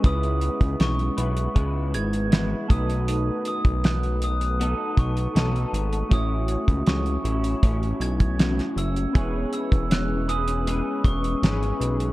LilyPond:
<<
  \new Staff \with { instrumentName = "Glockenspiel" } { \time 4/4 \key e \major \tempo 4 = 79 dis'''4 cis'''4. gis'''4 dis'''8~ | dis'''8 dis'''8 fis'''8 dis'''4 cis'''4. | dis'''4 cis'''4. gis'''4 e'''8~ | e'''8 e'''8 fis'''8 dis'''4 cis'''4. | }
  \new Staff \with { instrumentName = "Synth keys" } { \time 4/4 \key e \major <gis cis' e' b'>2.~ <gis cis' e' b'>8 <a dis' fis' b'>8~ | <a dis' fis' b'>2.~ <a dis' fis' b'>8 r8 | <a e' fis' cis''>1 | <b e' gis' cis''>1 | }
  \new Staff \with { instrumentName = "Clean electric guitar" } { \time 4/4 \key e \major <cis gis b e' b'>4. <b e' b'>8 <gis b e' b'>4 <gis b e' b'>8 <b, dis fis b dis' a'>8~ | <b, dis fis b dis' a'>2 <fis b dis' a'>4 <fis b dis' a'>4 | <a, fis cis' e'>4. <fis cis' e'>8 <a, fis cis' e'>4 <a, fis cis' e'>4 | <e gis cis' gis' b'>4. <cis' gis' b'>8 <gis cis' gis' b'>4 <gis cis' gis' b'>4 | }
  \new Staff \with { instrumentName = "Analog synth bass" } { \clef bass \time 4/4 \key e \major cis,8. cis,16 b,,8 b,,8 cis,8 gis,,4 b,,8~ | b,,8 r16 b,,4. r16 b,,8 b,,8 gis,,8 | a,,8. cis,16 cis,8 a,,8 a,,8 b,,4 fis,,8 | e,,8 r16 e,,4. r16 e,,8 gis,,8 b,,8 | }
  \new DrumStaff \with { instrumentName = "Drums" } \drummode { \time 4/4 <hh bd>16 hh16 hh16 <hh bd>16 <hh sn>16 hh16 hh16 hh16 <hh bd>8 hh16 hh16 <hh sn>8 <hh bd>16 hh16 | hh8 hh16 <hh bd>16 <hh sn>16 hh16 hh16 hh16 hh8 <hh bd>16 hh16 <hh sn>16 hh16 hh16 hh16 | <hh bd>8 hh16 <hh bd>16 <hh sn>16 hh16 hh16 hh16 <hh bd>16 hh16 hh16 <hh bd>16 <hh sn>16 <hh sn>16 hh16 hh16 | <hh bd>8 hh16 <hh bd>16 <hh sn>8 hh16 hh16 hh8 <hh bd>16 hh16 <hh sn>16 hh16 hh16 hh16 | }
>>